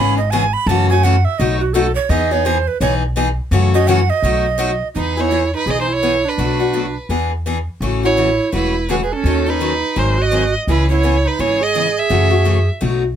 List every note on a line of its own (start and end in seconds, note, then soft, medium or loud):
0.00 0.52 G#1 medium
0.00 0.17 C#3 medium
0.00 0.17 E3 medium
0.00 0.18 B3 medium
0.00 0.18 C#4 medium
0.00 0.18 G#4 medium
0.00 0.17 B5 loud
0.17 0.32 D#5 medium
0.30 0.43 C#3 medium
0.30 0.43 E3 medium
0.30 0.43 B3 medium
0.30 0.43 C#4 medium
0.30 0.43 G#4 loud
0.30 0.55 G#5 loud
0.53 0.69 B5 loud
0.66 1.24 F#2 loud
0.66 0.89 C#3 medium
0.66 0.89 E3 medium
0.66 0.89 A3 medium
0.66 0.89 C#4 medium
0.66 0.90 F#4 medium
0.66 0.89 A5 loud
0.90 1.04 A3 soft
0.90 1.03 C#4 medium
0.90 1.03 F#4 medium
0.90 1.05 G#5 loud
1.03 1.14 C#3 medium
1.03 1.15 E3 medium
1.03 1.15 A3 medium
1.03 1.15 C#4 medium
1.03 1.15 F#4 loud
1.03 1.26 F#5 loud
1.25 1.40 E5 loud
1.38 1.96 B1 medium
1.38 1.60 B2 medium
1.38 1.60 F#3 medium
1.38 1.60 A3 medium
1.38 1.61 D#4 medium
1.38 1.61 F#4 medium
1.38 1.59 D#5 medium
1.60 1.75 F#4 medium
1.73 1.85 B2 medium
1.73 1.85 F#3 medium
1.73 1.86 A3 loud
1.73 1.86 D#4 medium
1.73 1.86 F#4 loud
1.73 1.95 A4 loud
1.95 2.11 C#5 loud
2.09 2.67 E2 loud
2.09 2.31 E3 medium
2.09 2.31 B3 medium
2.09 2.31 D#4 medium
2.09 2.30 G#4 medium
2.09 2.33 D#5 loud
2.31 2.45 B3 soft
2.31 2.45 D#4 medium
2.31 2.45 G#4 medium
2.31 2.47 C#5 loud
2.45 2.56 E3 medium
2.45 2.57 B3 medium
2.45 2.57 D#4 medium
2.45 2.57 G#4 loud
2.45 2.69 C5 medium
2.68 2.80 B4 medium
2.81 3.38 B1 medium
2.81 3.02 E3 medium
2.81 3.02 B3 medium
2.81 3.02 D#4 medium
2.81 3.02 G#4 medium
2.81 2.94 C#5 loud
3.16 3.27 E3 medium
3.16 3.28 B3 medium
3.16 3.28 D#4 medium
3.16 3.28 G#4 medium
3.51 4.09 F#2 loud
3.51 3.73 C#3 medium
3.51 3.73 E3 medium
3.51 3.74 A3 medium
3.51 3.74 C#4 medium
3.51 3.73 F#4 medium
3.74 3.88 A3 soft
3.74 3.87 C#4 medium
3.74 3.87 F#4 medium
3.74 3.89 D#5 loud
3.87 3.99 C#3 medium
3.87 3.99 E3 medium
3.87 3.99 A3 medium
3.87 3.99 C#4 loud
3.87 3.99 F#4 loud
3.87 3.93 G5 loud
3.92 4.11 F#5 loud
4.10 4.88 D#5 loud
4.22 4.80 B1 medium
4.22 4.45 B2 medium
4.22 4.45 F#3 medium
4.22 4.45 A3 medium
4.22 4.45 D#4 medium
4.22 4.45 F#4 medium
4.58 4.70 B2 medium
4.58 4.70 F#3 medium
4.58 4.70 A3 medium
4.58 4.70 D#4 medium
4.58 4.70 F#4 loud
4.95 5.53 E2 medium
4.95 5.16 E3 medium
4.95 5.17 B3 medium
4.95 5.19 D#4 medium
4.95 5.17 D#4 medium
4.95 5.16 G#4 medium
4.95 5.22 B4 medium
5.17 5.30 B3 soft
5.17 5.30 D#4 soft
5.17 5.53 E4 medium
5.17 5.30 G#4 soft
5.17 5.55 C#5 medium
5.31 5.42 E3 medium
5.31 5.42 B3 medium
5.31 5.42 D#4 medium
5.31 5.43 G#4 medium
5.54 5.68 D#4 medium
5.54 5.72 B4 medium
5.66 6.24 B1 medium
5.66 5.88 E3 medium
5.66 5.88 B3 medium
5.66 5.88 D#4 medium
5.66 5.79 G#4 medium
5.66 5.88 G#4 medium
5.66 5.81 D#5 medium
5.80 5.89 D#4 medium
5.80 5.94 C5 medium
5.88 6.27 E4 medium
5.92 6.30 C#5 medium
6.03 6.14 E3 medium
6.03 6.14 B3 medium
6.03 6.14 D#4 medium
6.03 6.14 G#4 medium
6.25 6.96 D4 medium
6.25 6.98 B4 medium
6.38 6.95 B1 medium
6.38 6.59 B2 medium
6.38 6.60 F#3 medium
6.38 6.60 A3 medium
6.38 6.59 D4 medium
6.38 6.58 F#4 medium
6.59 6.73 A3 soft
6.59 6.73 D4 soft
6.59 6.73 F#4 soft
6.73 6.85 B2 medium
6.73 6.85 F#3 medium
6.73 6.85 A3 medium
6.73 6.85 D4 medium
6.73 6.85 F#4 medium
7.09 7.67 E2 medium
7.09 7.31 E3 medium
7.09 7.31 B3 medium
7.09 7.31 D4 medium
7.09 7.31 G#4 medium
7.46 7.57 E3 medium
7.46 7.57 B3 medium
7.46 7.57 D4 medium
7.46 7.57 G#4 medium
7.81 8.38 A1 medium
7.81 8.03 C#3 medium
7.81 8.03 E3 medium
7.81 8.03 A3 medium
7.81 8.03 C#4 medium
7.81 8.02 F#4 medium
8.03 8.17 A3 soft
8.03 8.17 C#4 soft
8.03 8.50 E4 medium
8.03 8.17 F#4 soft
8.03 8.50 C#5 medium
8.17 8.28 C#3 medium
8.17 8.28 E3 medium
8.17 8.29 A3 medium
8.17 8.29 C#4 medium
8.17 8.29 F#4 medium
8.52 9.10 E1 medium
8.52 8.74 C#3 medium
8.52 8.74 E3 medium
8.52 8.74 A3 medium
8.52 8.74 C#4 medium
8.52 8.87 E4 medium
8.52 8.74 F#4 medium
8.52 8.87 B4 medium
8.89 9.00 C#3 medium
8.89 9.00 E3 medium
8.89 9.00 A3 medium
8.89 9.00 C#4 medium
8.89 9.01 F#4 medium
8.89 8.96 G#4 medium
8.89 8.96 B4 medium
9.03 9.14 G#4 medium
9.03 9.14 B4 soft
9.12 9.50 C#4 medium
9.12 9.17 D4 medium
9.12 9.51 A4 medium
9.24 9.81 D#2 medium
9.24 9.46 D#3 medium
9.24 9.46 F#3 medium
9.24 9.46 C#4 medium
9.24 9.46 D#4 medium
9.24 9.45 A4 medium
9.46 9.60 C#4 soft
9.46 9.60 D#4 soft
9.46 9.97 D#4 medium
9.46 9.60 A4 soft
9.46 10.00 B4 medium
9.60 9.71 D#3 medium
9.60 9.72 F#3 medium
9.60 9.72 C#4 medium
9.60 9.72 D#4 medium
9.60 9.72 A4 medium
9.96 10.54 G#1 medium
9.96 10.17 D#3 medium
9.96 10.17 F#3 medium
9.96 10.17 C4 medium
9.96 10.17 D#4 medium
9.96 10.20 D#4 medium
9.96 10.17 G#4 medium
9.96 10.23 C5 medium
10.18 10.54 F#4 medium
10.18 10.56 D#5 medium
10.31 10.43 D#3 medium
10.31 10.43 F#3 medium
10.31 10.43 C4 medium
10.31 10.43 D#4 medium
10.31 10.43 G#4 medium
10.67 11.25 C#2 medium
10.67 10.89 C#3 medium
10.67 10.89 E3 medium
10.67 10.89 B3 medium
10.67 10.89 C#4 medium
10.67 10.89 E4 medium
10.67 10.88 G#4 medium
10.67 10.89 B4 medium
10.89 11.03 B3 soft
10.89 11.03 C#4 soft
10.89 11.27 E4 medium
10.89 11.02 G#4 soft
10.89 11.28 C#5 medium
11.03 11.14 C#3 medium
11.03 11.15 E3 medium
11.03 11.15 B3 medium
11.03 11.15 C#4 medium
11.03 11.15 G#4 medium
11.25 11.41 D#4 medium
11.25 11.42 B4 medium
11.39 11.96 G#1 medium
11.39 11.60 C#3 medium
11.39 11.60 E3 medium
11.39 11.60 B3 medium
11.39 11.60 C#4 medium
11.39 11.63 E4 medium
11.39 11.60 G#4 medium
11.39 11.64 C#5 medium
11.61 11.98 G#4 medium
11.61 12.00 D#5 medium
11.75 11.86 C#3 medium
11.75 11.86 E3 medium
11.75 11.86 B3 medium
11.75 11.86 C#4 medium
11.75 11.87 G#4 medium
11.98 12.69 G#4 medium
11.98 12.69 E5 medium
12.10 12.68 F#2 medium
12.10 12.31 C#3 medium
12.10 12.31 E3 medium
12.10 12.32 A3 medium
12.10 12.31 C#4 medium
12.10 12.29 F#4 medium
12.31 12.44 A3 soft
12.31 12.45 C#4 soft
12.31 12.45 F#4 medium
12.45 12.57 C#3 medium
12.45 12.57 E3 medium
12.45 12.57 A3 medium
12.45 12.57 C#4 medium
12.45 12.58 F#4 medium
12.81 13.16 B1 medium
12.81 13.03 B2 medium
12.81 13.02 F#3 medium
12.81 13.03 A3 medium
12.81 13.03 D#4 medium
12.81 13.03 F#4 medium